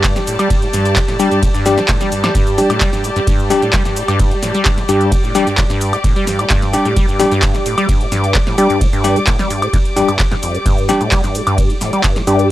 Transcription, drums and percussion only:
0.04 kick, clap, closed hi-hat, ride, shaker
0.16 snare, closed hi-hat, shaker
0.27 open hi-hat, shaker
0.39 closed hi-hat, high woodblock, shaker
0.50 kick, closed hi-hat, ride, shaker
0.62 closed hi-hat
0.73 snare, open hi-hat, shaker
0.85 closed hi-hat, shaker
0.96 kick, clap, closed hi-hat, ride, shaker
1.08 snare, closed hi-hat
1.20 open hi-hat, shaker
1.31 closed hi-hat, shaker
1.43 kick, closed hi-hat, ride, shaker
1.55 closed hi-hat, shaker
1.66 snare, open hi-hat, shaker
1.78 snare, closed hi-hat, shaker
1.88 kick, clap, closed hi-hat, ride, shaker
2.01 snare, closed hi-hat, shaker
2.12 open hi-hat, shaker
2.24 snare, closed hi-hat, high woodblock, shaker
2.35 kick, closed hi-hat, ride, shaker
2.47 closed hi-hat, shaker
2.58 snare, open hi-hat, shaker
2.70 closed hi-hat, high woodblock, shaker
2.81 kick, clap, closed hi-hat, ride, shaker
2.93 snare, closed hi-hat, shaker
3.04 open hi-hat, shaker
3.16 closed hi-hat, shaker
3.27 kick, closed hi-hat, ride, shaker
3.39 shaker
3.50 snare, open hi-hat, shaker
3.62 closed hi-hat, shaker
3.73 kick, clap, closed hi-hat, ride, shaker
3.85 snare, closed hi-hat, shaker
3.96 open hi-hat, shaker
4.08 closed hi-hat, high woodblock, shaker
4.20 kick, closed hi-hat, ride, shaker
4.31 closed hi-hat
4.43 snare, open hi-hat, shaker
4.55 closed hi-hat, shaker
4.65 kick, clap, closed hi-hat, ride, shaker
4.78 snare, closed hi-hat
4.89 open hi-hat, shaker
5.01 closed hi-hat, shaker
5.12 kick, closed hi-hat, ride, shaker
5.24 shaker
5.35 snare, open hi-hat, shaker
5.47 closed hi-hat, shaker
5.58 kick, clap, closed hi-hat, ride, shaker
5.70 snare, closed hi-hat, shaker
5.81 open hi-hat, shaker
5.93 closed hi-hat, high woodblock, shaker
6.04 kick, closed hi-hat, ride, shaker
6.16 closed hi-hat
6.27 snare, open hi-hat, shaker
6.39 closed hi-hat, high woodblock, shaker
6.50 kick, clap, closed hi-hat, ride, shaker
6.62 snare, closed hi-hat
6.73 open hi-hat, shaker
6.85 closed hi-hat, shaker
6.97 kick, closed hi-hat, ride, shaker
7.08 shaker
7.20 snare, open hi-hat, shaker
7.32 closed hi-hat, shaker
7.42 kick, clap, closed hi-hat, ride, shaker
7.55 snare, closed hi-hat, shaker
7.66 open hi-hat, shaker
7.78 closed hi-hat, high woodblock, shaker
7.89 kick, closed hi-hat, ride, shaker
8.01 closed hi-hat
8.12 snare, open hi-hat, shaker
8.24 closed hi-hat, shaker
8.35 kick, clap, closed hi-hat, ride, shaker
8.47 snare, closed hi-hat
8.58 open hi-hat, shaker
8.70 closed hi-hat, shaker
8.81 kick, closed hi-hat, ride, shaker
8.93 closed hi-hat, shaker
9.04 snare, open hi-hat, shaker
9.16 closed hi-hat, shaker
9.27 kick, clap, closed hi-hat, ride, shaker
9.39 snare, closed hi-hat, shaker
9.50 open hi-hat, shaker
9.62 closed hi-hat, high woodblock, shaker
9.73 kick, closed hi-hat, ride, shaker
9.85 closed hi-hat
9.97 snare, open hi-hat, shaker
10.09 closed hi-hat, high woodblock, shaker
10.19 kick, clap, closed hi-hat, ride, shaker
10.32 snare, closed hi-hat
10.43 open hi-hat, shaker
10.55 closed hi-hat, shaker
10.66 kick, closed hi-hat, ride, shaker
10.78 shaker
10.89 snare, open hi-hat, shaker
11.01 closed hi-hat, shaker
11.12 kick, clap, closed hi-hat, ride, shaker
11.24 snare, closed hi-hat, shaker
11.35 open hi-hat, shaker
11.47 closed hi-hat, high woodblock, shaker
11.58 kick, closed hi-hat, ride, shaker
11.70 closed hi-hat
11.81 snare, open hi-hat, shaker
11.93 closed hi-hat, shaker
12.04 kick, clap, closed hi-hat, ride, shaker
12.16 snare, closed hi-hat
12.27 open hi-hat, shaker
12.39 closed hi-hat, shaker

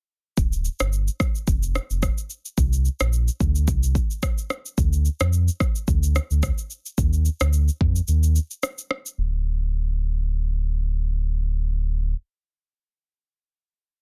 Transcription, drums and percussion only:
0.37 kick, shaker
0.53 shaker
0.65 shaker
0.80 cross-stick, shaker
0.93 shaker
1.08 shaker
1.20 kick, cross-stick, shaker
1.35 shaker
1.47 kick, shaker
1.63 shaker
1.75 cross-stick, shaker
1.90 shaker
2.03 kick, cross-stick, shaker
2.18 shaker
2.30 shaker
2.46 shaker
2.58 kick, shaker
2.73 shaker
2.85 shaker
3.00 cross-stick, shaker
3.13 shaker
3.28 shaker
3.40 kick, shaker
3.55 shaker
3.68 kick, shaker
3.83 shaker
3.95 kick, shaker
4.11 shaker
4.23 kick, cross-stick, shaker
4.38 shaker
4.50 cross-stick, shaker
4.66 shaker
4.78 kick, shaker
4.93 shaker
5.05 shaker
5.20 cross-stick, shaker
5.33 shaker
5.48 shaker
5.60 kick, cross-stick, shaker
5.76 shaker
5.88 kick, shaker
6.03 shaker
6.16 cross-stick, shaker
6.31 shaker
6.43 kick, cross-stick, shaker
6.58 shaker
6.70 shaker
6.86 shaker
6.98 kick, shaker
7.13 shaker
7.25 shaker
7.40 cross-stick, shaker
7.53 shaker
7.68 shaker
7.81 kick
7.96 shaker
8.08 shaker
8.23 shaker
8.36 shaker
8.51 shaker
8.63 cross-stick, shaker
8.78 shaker
8.91 cross-stick
9.06 shaker

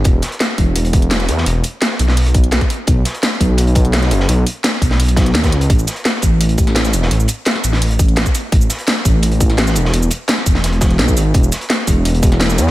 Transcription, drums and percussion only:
0.04 kick, closed hi-hat
0.22 snare, closed hi-hat
0.32 closed hi-hat
0.40 snare, closed hi-hat
0.58 kick, closed hi-hat
0.76 closed hi-hat
0.85 closed hi-hat
0.93 kick, closed hi-hat
1.02 closed hi-hat
1.11 snare, closed hi-hat
1.19 snare, closed hi-hat
1.29 closed hi-hat
1.37 snare
1.46 closed hi-hat
1.64 closed hi-hat
1.81 snare, closed hi-hat
1.99 closed hi-hat
2.08 snare
2.17 closed hi-hat, open hi-hat
2.26 closed hi-hat
2.34 kick, closed hi-hat
2.44 closed hi-hat
2.51 snare, closed hi-hat
2.61 kick, closed hi-hat
2.70 closed hi-hat
2.87 kick, closed hi-hat
3.05 snare, closed hi-hat
3.14 closed hi-hat
3.23 snare, closed hi-hat
3.40 kick, closed hi-hat
3.58 closed hi-hat
3.67 closed hi-hat
3.75 kick, closed hi-hat
3.85 closed hi-hat
3.93 snare, closed hi-hat
4.02 snare, closed hi-hat
4.11 closed hi-hat
4.20 snare
4.29 closed hi-hat
4.47 closed hi-hat
4.64 snare, closed hi-hat
4.82 kick, closed hi-hat
4.91 snare
5.00 closed hi-hat, open hi-hat
5.08 closed hi-hat
5.16 kick, snare, closed hi-hat
5.26 closed hi-hat
5.35 snare, closed hi-hat
5.43 kick, snare, closed hi-hat
5.52 closed hi-hat
5.61 closed hi-hat
5.70 kick, closed hi-hat
5.79 shaker
5.87 snare, closed hi-hat, shaker
5.96 closed hi-hat
6.05 snare, closed hi-hat
6.22 kick, closed hi-hat, shaker
6.41 closed hi-hat
6.49 closed hi-hat
6.58 kick, closed hi-hat, shaker
6.67 snare, closed hi-hat
6.75 snare, closed hi-hat
6.85 snare, closed hi-hat, shaker
6.93 closed hi-hat, shaker
7.02 snare
7.11 closed hi-hat
7.20 shaker
7.28 closed hi-hat, shaker
7.46 snare, closed hi-hat
7.55 snare
7.64 closed hi-hat, shaker
7.73 snare
7.82 closed hi-hat, open hi-hat
7.91 closed hi-hat
7.99 kick, closed hi-hat, shaker
8.08 closed hi-hat
8.16 snare, closed hi-hat
8.26 kick, closed hi-hat, shaker
8.35 closed hi-hat, shaker
8.52 kick, closed hi-hat
8.61 shaker
8.70 snare, closed hi-hat, shaker
8.78 closed hi-hat
8.87 snare, closed hi-hat
9.05 kick, closed hi-hat, shaker
9.23 closed hi-hat
9.31 closed hi-hat
9.40 kick, closed hi-hat, shaker
9.50 snare, closed hi-hat
9.58 snare, closed hi-hat
9.67 snare, closed hi-hat, shaker
9.75 closed hi-hat, shaker
9.85 snare
9.93 closed hi-hat
10.02 shaker
10.11 closed hi-hat, shaker
10.28 snare, closed hi-hat
10.38 snare
10.46 kick, closed hi-hat, shaker
10.55 snare
10.64 snare, closed hi-hat
10.72 closed hi-hat
10.81 kick, snare, closed hi-hat, shaker
10.91 closed hi-hat
10.99 snare, closed hi-hat
11.08 kick, closed hi-hat, shaker
11.17 closed hi-hat, shaker
11.34 kick, closed hi-hat
11.43 shaker
11.52 snare, closed hi-hat, shaker
11.61 closed hi-hat
11.70 snare, closed hi-hat
11.87 kick, closed hi-hat, shaker
12.05 closed hi-hat
12.14 closed hi-hat
12.23 kick, closed hi-hat, shaker
12.32 snare, closed hi-hat
12.40 snare, closed hi-hat
12.50 snare, closed hi-hat, shaker
12.58 closed hi-hat, shaker
12.67 snare

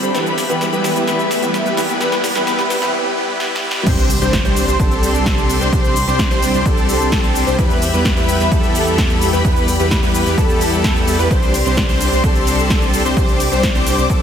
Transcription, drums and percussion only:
0.03 closed hi-hat, shaker
0.15 snare, closed hi-hat, shaker
0.26 closed hi-hat, shaker
0.38 snare, open hi-hat, shaker
0.49 closed hi-hat, shaker
0.61 snare, closed hi-hat, shaker
0.73 closed hi-hat, shaker
0.84 snare, open hi-hat, shaker
0.96 closed hi-hat, shaker
1.08 snare, closed hi-hat, shaker
1.19 closed hi-hat, shaker
1.31 snare, open hi-hat, shaker
1.42 closed hi-hat, shaker
1.54 snare, closed hi-hat, shaker
1.66 closed hi-hat, shaker
1.77 snare, open hi-hat, shaker
1.89 closed hi-hat, shaker
2.01 snare, closed hi-hat, shaker
2.12 snare, closed hi-hat, shaker
2.24 snare, open hi-hat, shaker
2.35 snare, closed hi-hat, shaker
2.47 snare, closed hi-hat, shaker
2.59 snare, closed hi-hat, shaker
2.70 snare, open hi-hat, shaker
2.82 snare, closed hi-hat, shaker
3.40 snare
3.56 snare
3.71 snare
3.87 kick, closed hi-hat, crash, shaker
3.98 closed hi-hat, shaker
4.10 open hi-hat, shaker
4.21 closed hi-hat, shaker
4.33 kick, snare, closed hi-hat, shaker
4.45 closed hi-hat, shaker
4.56 open hi-hat, shaker
4.68 closed hi-hat, shaker
4.80 kick, closed hi-hat, shaker
4.91 closed hi-hat, shaker
5.03 open hi-hat, shaker
5.15 closed hi-hat, shaker
5.26 kick, snare, closed hi-hat, shaker
5.38 closed hi-hat, shaker
5.49 open hi-hat, shaker
5.61 closed hi-hat, shaker
5.73 kick, closed hi-hat, shaker
5.84 closed hi-hat, shaker
5.96 open hi-hat, shaker
6.08 closed hi-hat, shaker
6.19 kick, snare, closed hi-hat, shaker
6.31 closed hi-hat, shaker
6.42 open hi-hat, shaker
6.54 closed hi-hat, shaker
6.66 kick, closed hi-hat, shaker
6.77 closed hi-hat, shaker
6.89 open hi-hat, shaker
7.00 closed hi-hat, shaker
7.12 kick, snare, closed hi-hat, shaker
7.24 closed hi-hat, shaker
7.35 open hi-hat, shaker
7.47 closed hi-hat, shaker
7.59 kick, closed hi-hat, shaker
7.70 closed hi-hat, shaker
7.82 open hi-hat, shaker
7.93 closed hi-hat, shaker
8.05 kick, snare, closed hi-hat, shaker
8.17 closed hi-hat, shaker
8.28 open hi-hat, shaker
8.40 closed hi-hat, shaker
8.52 kick, closed hi-hat, shaker
8.63 closed hi-hat, shaker
8.75 open hi-hat, shaker
8.87 closed hi-hat, shaker
8.98 kick, snare, closed hi-hat, shaker
9.10 closed hi-hat, shaker
9.21 open hi-hat, shaker
9.33 closed hi-hat, shaker
9.45 kick, closed hi-hat, shaker
9.56 closed hi-hat, shaker
9.68 open hi-hat, shaker
9.80 closed hi-hat, shaker
9.91 kick, snare, closed hi-hat, shaker
10.03 closed hi-hat, shaker
10.14 open hi-hat, shaker
10.26 closed hi-hat, shaker
10.38 kick, closed hi-hat, shaker
10.49 closed hi-hat, shaker
10.61 open hi-hat, shaker
10.73 closed hi-hat, shaker
10.84 kick, snare, closed hi-hat, shaker
10.96 closed hi-hat, shaker
11.08 open hi-hat, shaker
11.19 closed hi-hat, shaker
11.31 kick, closed hi-hat, shaker
11.42 closed hi-hat, shaker
11.54 open hi-hat, ride, shaker
11.66 closed hi-hat, shaker
11.77 kick, snare, closed hi-hat, shaker
11.89 closed hi-hat, shaker
12.01 open hi-hat, ride, shaker
12.12 closed hi-hat, shaker
12.24 kick, closed hi-hat, shaker
12.35 closed hi-hat, shaker
12.47 open hi-hat, ride, shaker
12.59 closed hi-hat, shaker
12.70 kick, snare, closed hi-hat, shaker
12.82 closed hi-hat, shaker
12.94 open hi-hat, ride, shaker
13.05 closed hi-hat, shaker
13.17 kick, closed hi-hat, shaker
13.28 closed hi-hat, shaker
13.40 open hi-hat, ride, shaker
13.52 shaker
13.63 kick, snare, closed hi-hat, shaker
13.75 closed hi-hat, shaker
13.87 open hi-hat, ride, shaker
13.98 closed hi-hat, shaker
14.10 kick, closed hi-hat, shaker

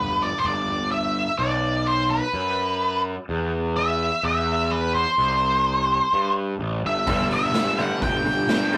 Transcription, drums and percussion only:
7.07 kick, open hi-hat
7.31 open hi-hat
7.54 snare, open hi-hat
7.78 open hi-hat
8.02 kick, open hi-hat
8.26 open hi-hat
8.49 snare, open hi-hat
8.73 open hi-hat

